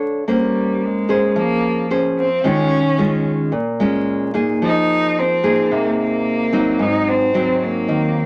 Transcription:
Already playing: D4 A4 C#5
0.28 G3 A#3 C#4 C5
0.85 G#3
1.09 C#4 G#4 C5
1.36 F3 A#3
1.90 C#4 G#4 C5
2.19 C4
2.44 D#3 G#3 C#4 F4
2.98 G#3 C#4 F4
3.52 A#2
3.80 G#3 C#4 F4
4.34 A#3 D#4 G#4
4.62 F3 D#4
5.18 C4
5.43 A#3 D#4 G#4
5.71 C3 A#3
6.01 A#3
6.52 F#3 C4 D#4
6.79 G#2 D#4
7.08 C4
7.34 F#3 C4 D#4
7.63 A#3
7.88 D#3

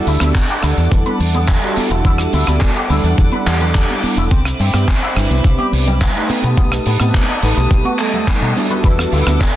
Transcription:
Already playing: G3 D4 E4 F#4 A4 F#5 D6
0.07 D2 E4, open hi-hat, tambourine, shaker
0.20 D2 G3 D4 E4 F#4 A4, cross-stick, tambourine, high conga, shaker
0.34 kick, clap, closed hi-hat, tambourine, muted conga, shaker
0.49 G4, closed hi-hat
0.62 D2 G3 D4 E4 A4 F#5, cross-stick, open hi-hat, tambourine, shaker
0.77 E2, closed hi-hat, tambourine, shaker
0.92 E2 E3, kick, closed hi-hat, tambourine, muted conga, shaker
1.06 B4, closed hi-hat, high conga
1.20 E2, open hi-hat, tambourine, shaker
1.33 B3, closed hi-hat, tambourine, muted conga, low conga, shaker
1.48 D4, kick, clap, closed hi-hat, shaker
1.61 G3 D4 E4 F#4 A4, closed hi-hat
1.76 muted fingered electric bass stroke, open hi-hat, tambourine, high conga, shaker
1.91 E1 E4, closed hi-hat, tambourine, muted conga, low conga, shaker
2.05 E2 E4, kick, closed hi-hat, tambourine, shaker
2.18 cross-stick, closed hi-hat
2.33 D2 E4, open hi-hat, tambourine, muted conga, shaker
2.47 D2 G3 D4 E4 F#4 A4, cross-stick, closed hi-hat, tambourine, high conga, shaker
2.61 kick, clap, closed hi-hat, tambourine, shaker
2.76 G4, closed hi-hat
2.89 D2 G3 D4 E4 A4 F#5, open hi-hat, tambourine, muted conga, shaker
3.04 E2, closed hi-hat, tambourine, shaker
3.18 E2 E3, kick, closed hi-hat, tambourine, shaker
3.32 B4, closed hi-hat, muted conga, high conga
3.46 E2, clap, open hi-hat, tambourine, shaker
3.61 B3, closed hi-hat, tambourine, low conga, shaker
3.75 D4, kick, clap, closed hi-hat, tambourine, shaker
3.89 closed hi-hat, muted conga
4.03 muted fingered electric bass stroke, open hi-hat, tambourine, high conga, shaker
4.17 E1 E4, closed hi-hat, tambourine, low conga, shaker
4.31 C2 C4 E5 B5, kick, closed hi-hat, tambourine, muted conga, shaker
4.45 cross-stick, closed hi-hat
4.59 G2 C4, open hi-hat, tambourine, shaker
4.73 G2 G3 C4 D4 E4 B4, cross-stick, tambourine, high conga, shaker
4.88 kick, clap, closed hi-hat, tambourine, muted conga, shaker
5.02 E4, closed hi-hat
5.15 G1 G3 C4 D4 E4 B4, cross-stick, open hi-hat, tambourine, shaker
5.30 C2, closed hi-hat, tambourine, muted conga, shaker
5.44 C2 C3, kick, closed hi-hat, tambourine, shaker
5.58 G4, closed hi-hat, high conga
5.73 C2, open hi-hat, tambourine, shaker
5.86 G3, closed hi-hat, tambourine, muted conga, low conga, shaker
6.00 B3, kick, clap, closed hi-hat, tambourine, shaker
6.14 A3 D#4 G4 B4, closed hi-hat
6.29 A5 D#6, muted fingered electric bass stroke, open hi-hat, tambourine, muted conga, high conga, shaker
6.43 B2 B3, closed hi-hat, tambourine, low conga, shaker
6.57 B1 B3, kick, closed hi-hat, tambourine, shaker
6.72 cross-stick, closed hi-hat
6.86 A2 B3, open hi-hat, tambourine, muted conga, shaker
7.00 A2 A3 B3 C4 D#4 G4 B4, cross-stick, closed hi-hat, tambourine, high conga, shaker
7.14 kick, clap, closed hi-hat, tambourine, shaker
7.28 D#4, closed hi-hat, muted conga
7.42 A1 A3 B3 D#4 G4 B4, open hi-hat, tambourine, shaker
7.56 B1, closed hi-hat, tambourine, shaker
7.71 B2, kick, closed hi-hat, tambourine, shaker
7.84 F#4, closed hi-hat, muted conga, high conga
7.99 G3 A3 D#4 A4, clap, open hi-hat, tambourine, shaker
8.13 A3, closed hi-hat, tambourine, low conga, shaker
8.27 B3, kick, clap, closed hi-hat, tambourine, muted conga
8.42 B2 D#4, closed hi-hat
8.55 G3 D4 E4 F#4 A4, open hi-hat, tambourine, high conga, shaker
8.70 B4, closed hi-hat, tambourine, low conga, shaker
8.84 E2 E4 A4 B4 F#5 D6, kick, closed hi-hat, tambourine, shaker
8.98 cross-stick, closed hi-hat, muted conga
9.12 D2 E4, open hi-hat, tambourine, shaker
9.26 D2 G3 D4 E4 F#4 A4, cross-stick, closed hi-hat, tambourine, high conga, shaker
9.41 D5, kick, clap, closed hi-hat, tambourine, muted conga, shaker

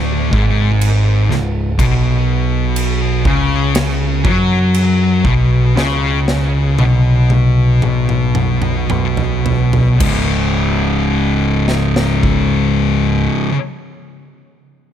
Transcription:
Already playing: D1 D2
0.32 G#1 G#2, kick
0.81 crash
1.29 C#1 C#2, snare
1.78 B1 B2, kick, crash
2.76 crash
3.25 C#2 C#3, kick
3.75 snare, crash
4.24 F#2 F#3, kick
4.74 crash
5.24 B1 B2, kick
5.76 C#2 C#3, snare
6.28 snare
6.78 B1 B2, high tom
7.30 high tom
7.82 B1 B2, mid tom
8.09 mid tom
8.35 mid tom
8.62 mid tom
8.90 B1 B2, mid tom
9.17 floor tom
9.46 floor tom
9.73 floor tom
10.00 C#1 C#2 G#2, kick, crash
10.04 C#3
11.68 snare
11.96 snare
12.23 kick

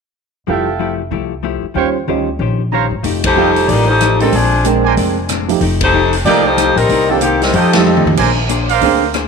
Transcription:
0.47 F1 F3 G3 A3 E4 F4 G4 A4 E5 F5 G5
0.79 F3 A3 E4 G4
1.11 C2 F3 A3 E4 G4
1.43 F3 A3 E4 G4
1.63 muted upright bass stroke
1.74 D#2 D#3 G3 C#4 F4 G4 C5 C#5 F5 G5
2.08 D2 D#3 G3 C#4 F4 G4 C5 D#5
2.39 A#1 D#3 C#4 G4 C5
2.72 D#3 C#4 G4 C5 C#5 F5 A#5
2.91 G1
3.03 F1 F3 A3 D#4 G4, kick, open hi-hat
3.24 A3 D#4 G4 C5, kick, ride
3.36 F3 G3 A3 D#4 F4 G4 A4 D#5 F5 G5
3.56 open hi-hat
3.68 A1 F3 A3 A#3 D#4 G4 D5, kick, open hi-hat
3.88 A3 D#4 G4 C5
4.00 F3 A3 D#4 G4, cross-stick, closed hi-hat
4.20 G3 G#3 C4 D4 D#4 A4 A#4, open hi-hat
4.32 A#1 A#2 F3 G#3 C4 D4 G#4, kick, open hi-hat
4.64 A#2 G#3 C4 D4 A#4, closed hi-hat
4.84 A#4 C5 D5 G#5
4.97 F1 A#2 G#3 C4 D4, kick, open hi-hat
5.29 A#2 G#3 C4 D4, cross-stick, closed hi-hat
5.48 F3 A3 D#4 G4, open hi-hat
5.60 F1 F3 A3 D#4 G4, kick, open hi-hat
5.81 A3 D#4 G4 C5, kick, ride
5.93 F3 A3 D#4 G4
6.13 open hi-hat
6.25 C2 F3 A3 A#3 D#4 G4 A4 D5 D#5 F5 G5, kick, open hi-hat
6.45 A3 D#4 G4 C5
6.57 F3 A3 D#4 G4, cross-stick, closed hi-hat
6.76 A#1 G3 C4 D#4 A#4, open hi-hat
6.89 C2 C3 A#3 D#4 G4, kick, open hi-hat
7.09 D#3 F3 A#3 C4 D4 G4 A4
7.21 C3 D#3 A#3 C4 D#4 G4, closed hi-hat
7.42 G3 C4 D#4 A#4, snare, open hi-hat
7.53 F2 F3 A3 D#4 G4 A4 C5 D#5 F5 G5, kick, open hi-hat
7.73 F3 G3 A3 C4 D#4 G4 A4, snare, ride
7.86 F3 A3 D#4 G4
7.97 mid tom
8.05 F2, mid tom
8.17 A#1 A#3 D4 G#4 A#4 C5 D5 G#5, kick, crash
8.49 A#3 D4 G#4 C5, closed hi-hat
8.69 A#4 C5 D5 F5, open hi-hat
8.81 D2 D3 A#3 C4 D4 G#4 C5, kick, open hi-hat
9.14 A#3 D4 G#4 C5, cross-stick, closed hi-hat

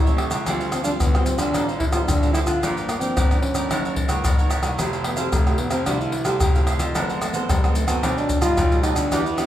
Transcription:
Already playing: A1 E3 E4
0.05 G3 A#3 C#4 A4 C#5 E5, pandeiro, maracas
0.17 G4 A4 C#5 E5, pandeiro, tamborim
0.30 C#2 A4 C#5 E5, pandeiro, tamborim, maracas
0.46 D2 D3 G3 C4 D4 F4 A4 C5 F5, pandeiro, tamborim, maracas, surdo
0.60 A4 C5 F5, pandeiro, maracas
0.71 C4 D4 A4 C5 F5, pandeiro, tamborim, maracas
0.84 G3 C4 D4 F4 A4 C5 F5, pandeiro, maracas
0.99 D2 A2 B3, pandeiro, tamborim, maracas, surdo
1.14 G3 C4 F4 A4 C5 F5, pandeiro, tamborim, maracas
1.25 C4, muted cavaquinho stroke, pandeiro, maracas
1.38 D2 D4 A4 C5 F5, pandeiro, tamborim, maracas
1.53 A1 D3 G3 C4 D4 F4 A4 C5 F5, pandeiro, tamborim, maracas, surdo
1.68 A4 C5 F5, pandeiro, maracas
1.79 E4, muted cavaquinho stroke, pandeiro, surdo
1.92 A1 G3 C4 F4 A4 C5 F5, pandeiro, tamborim, maracas
2.07 D2 A2 D4, pandeiro, tamborim, maracas, surdo
2.22 G3 C4 F4 A4 C5 F5, pandeiro, maracas
2.33 D4 E4 A4 C5 F5, pandeiro, tamborim, maracas
2.45 D3 F4 A4 C5 F5, pandeiro, tamborim, maracas
2.62 G1 G2 F3 A#3 D4 F4 A#4 D5 G5, pandeiro, tamborim, maracas, surdo
2.77 A#4 D5 G5, pandeiro, maracas
2.87 A#3 F4 A#4 D5 G5, pandeiro, tamborim, maracas
2.99 F3 A#3 C4 D4 A#4 D5 G5, pandeiro, maracas
3.17 G1 D3, pandeiro, tamborim, maracas, surdo
3.30 F3 A#3 D4 A#4 D5 G5, pandeiro, tamborim, maracas
3.41 C#4, muted cavaquinho stroke, pandeiro
3.55 G1 A#4 D5 G5, pandeiro, tamborim, maracas
3.70 F#1 F#2 E3 A#3 D#4 E4 A#4 C#5 F#5, pandeiro, tamborim, maracas, surdo
3.85 A#4 C#5 F#5, pandeiro, maracas
3.96 muted cavaquinho stroke, pandeiro, surdo
4.08 C#2 E3 A#3 D#4 A#4 C#5 F#5, pandeiro, tamborim, maracas
4.24 F#1 C#3, pandeiro, tamborim, maracas, surdo
4.38 E3 A#3 D#4 A#4 C#5 F#5, pandeiro, maracas
4.50 E4 A#4 C#5 F#5, pandeiro, tamborim, maracas
4.62 C2 A#4 C#5 F#5, pandeiro, tamborim, maracas
4.78 F1 F3 A3 E4 G4 A4 C5 F5, pandeiro, tamborim, maracas, surdo
4.93 A4 C5 F5, pandeiro, maracas
5.04 B3 E4 A4 C5 F5, pandeiro, tamborim
5.16 A3 C4 E4 G4 A4 C5 F5, pandeiro, maracas
5.32 F1 C3 A3, pandeiro, tamborim, maracas, surdo
5.46 A3 E4 G4 A4 C5 F5, pandeiro, tamborim, maracas
5.58 B3, muted cavaquinho stroke, pandeiro
5.70 F1 C4 A4 C5 F5, pandeiro, tamborim, maracas
5.86 C2 F3 A3 D4 E4 G4 A4 C5 F5, pandeiro, tamborim, maracas, surdo
6.01 E4 A4 C5 F5, pandeiro, maracas
6.12 muted cavaquinho stroke, pandeiro
6.25 C2 A3 E4 G4 A4 C5 F5, pandeiro, tamborim, maracas
6.40 F1 C3, pandeiro, tamborim, maracas, surdo
6.55 A3 E4 G4 A4 C5 F5, pandeiro, maracas
6.67 E4 A4 C5 F5, pandeiro, tamborim, maracas
6.79 F2 A4 C5 F5, pandeiro, tamborim, maracas
6.95 F#1 F#2 E3 A3 C4 E4 A4 C5 F#5, pandeiro, tamborim, maracas, surdo
7.09 A4 C5 F#5, pandeiro, maracas
7.21 A3 E4 A4 C5 F#5, pandeiro, tamborim, maracas
7.33 E3 A3 B3 C4 A4 C5 F#5, pandeiro, maracas
7.49 F#1 F#2 G3, pandeiro, tamborim, maracas, surdo
7.64 E3 A3 C4 A4 C5 F#5, pandeiro, tamborim, maracas
7.75 A3, muted cavaquinho stroke, pandeiro, maracas
7.87 F#2 B3 A4 C5 F#5, pandeiro, tamborim, maracas
8.03 B1 B2 G3 A3 C4 D#4 G4 B4 D#5 A5, pandeiro, tamborim, maracas, surdo
8.17 D4 B4 D#5 A5, pandeiro, maracas
8.29 muted cavaquinho stroke, pandeiro, maracas, surdo
8.41 G2 G3 A3 D#4 F4 B4 D#5 A5, pandeiro, tamborim, maracas
8.57 B1 B2, pandeiro, tamborim, maracas, surdo
8.71 G3 A3 D#4 B4 D#5 A5, pandeiro, maracas
8.83 D#4 G4 B4 D#5 A5, pandeiro, tamborim, maracas
8.95 D2 D4 B4 D#5 A5, pandeiro, tamborim, maracas
9.11 E2 E3 B3 D4 E4 G4 B4 D5, pandeiro, tamborim, maracas, surdo
9.25 E4 G4 B4 D5, pandeiro, maracas
9.37 B3 D4 E4 G4 B4 D5, pandeiro, tamborim, maracas

